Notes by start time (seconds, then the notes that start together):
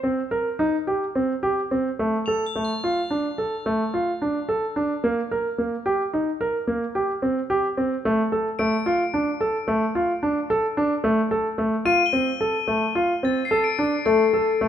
0.03 C4
0.31 A#4
0.59 D#4
0.87 G4
1.15 C4
1.43 G4
1.71 C4
1.99 A3
2.26 A4 F7
2.46 A7
2.56 A3
2.65 C8
2.84 F4
3.10 D4
3.38 A4
3.66 A3
3.94 F4
4.22 D4
4.49 A4
4.76 D4
5.04 A#3
5.31 A#4
5.58 A#3
5.86 G4
6.13 D#4
6.41 A#4
6.67 A#3
6.95 G4
7.22 C4
7.50 G4
7.77 C4
8.05 A3
8.32 A4
8.59 A3 D7
8.86 F4
9.14 D4
9.41 A4
9.68 A3
9.95 F4
10.23 D4
10.50 A4
10.77 D4
11.04 A3
11.31 A4
11.58 A3
11.85 F4 D#7
12.06 G7
12.13 C4
12.41 A4
12.68 A3
12.95 F4
13.23 C4 A6
13.45 C7
13.51 A4
13.64 D7
13.79 D4
14.06 A3 A4
14.33 A4
14.61 A3